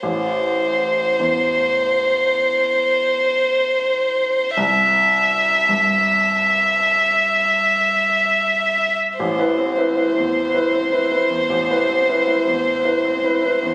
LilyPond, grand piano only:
\new Staff \with { instrumentName = "Grand piano" } { \time 6/8 \key a \minor \tempo 4. = 52 a,,4. e,4.~ | e,2. | c,4. g,4.~ | g,2. |
a,,16 <e' b'>16 c'16 <e' b'>16 <e' b'>16 e,8 <e' b'>16 c'16 <e' b'>16 <e' b'>16 e,16 | a,,16 <e' b'>16 c'16 <e' b'>16 <e' b'>16 e,8 <e' b'>16 c'16 <e' b'>16 <e' b'>16 e,16 | }